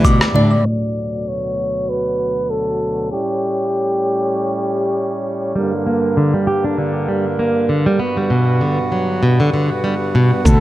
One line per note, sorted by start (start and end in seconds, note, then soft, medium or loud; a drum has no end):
0.00 0.34 D2 medium
0.00 0.62 G3 medium
0.00 0.62 E4 medium
0.05 0.20 B2 loud
0.05 0.24 D6 medium
0.05 kick loud
0.05 cabasa soft
0.21 cross-stick medium
0.21 cabasa soft
0.34 0.56 A2 loud
0.34 0.51 D4 medium
0.34 0.65 D5 medium
0.34 low conga medium
0.66 3.08 D2 medium
0.66 3.08 B2 medium
0.66 3.08 F#3 medium
0.66 1.29 D5 medium
1.28 1.90 C#5 medium
1.89 2.52 B4 medium
2.50 3.11 A4 medium
3.10 5.53 A2 medium
3.10 5.53 G3 medium
3.10 5.53 C#4 medium
3.10 5.22 G4 medium
5.55 10.41 G2 medium
5.55 7.98 D3 medium
5.55 5.72 G3 medium
5.55 7.98 A#3 medium
5.87 6.16 A#3 medium
6.17 6.32 D3 medium
6.34 6.46 G3 medium
6.47 6.64 G4 medium
6.64 6.77 D4 medium
6.78 7.07 D3 medium
7.08 7.25 G3 medium
7.39 7.68 A#3 medium
7.69 7.85 D3 medium
7.86 7.99 G3 medium
7.99 8.16 B3 medium
7.99 10.43 B3 medium
7.99 10.43 F#4 medium
8.17 8.29 G3 medium
8.30 8.60 B2 medium
8.61 8.78 D3 medium
8.92 9.21 F#3 medium
9.23 9.38 B2 medium
9.40 9.52 D3 medium
9.54 9.69 D3 medium
9.84 9.94 G3 medium
10.15 10.30 B2 medium
10.45 10.56 D2 medium
10.45 10.60 B2 medium
10.45 10.60 A4 loud
10.45 10.60 F#5 medium
10.45 kick loud
10.45 low conga medium
10.45 cabasa medium